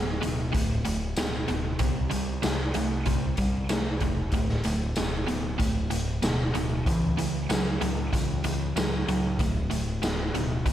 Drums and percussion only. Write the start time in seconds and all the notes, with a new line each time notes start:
0.23 closed hi-hat
0.54 kick, closed hi-hat
0.85 closed hi-hat
1.17 snare, closed hi-hat, tambourine
1.48 closed hi-hat
1.79 kick, closed hi-hat
2.11 closed hi-hat
2.43 snare, closed hi-hat, tambourine
2.74 closed hi-hat
3.06 kick, closed hi-hat
3.37 kick, closed hi-hat
3.69 snare, closed hi-hat, tambourine
4.00 kick, closed hi-hat
4.32 kick, closed hi-hat
4.49 snare
4.64 closed hi-hat
4.96 snare, closed hi-hat, tambourine
5.28 closed hi-hat
5.60 kick, closed hi-hat
5.91 closed hi-hat
6.23 snare, closed hi-hat, tambourine
6.55 closed hi-hat
6.86 kick, closed hi-hat
7.18 closed hi-hat
7.50 snare, closed hi-hat, tambourine
7.81 closed hi-hat
8.13 kick, closed hi-hat
8.44 closed hi-hat
8.77 snare, closed hi-hat, tambourine
9.08 closed hi-hat
9.39 kick, closed hi-hat
9.71 closed hi-hat
10.03 snare, closed hi-hat, tambourine
10.35 closed hi-hat
10.66 kick, closed hi-hat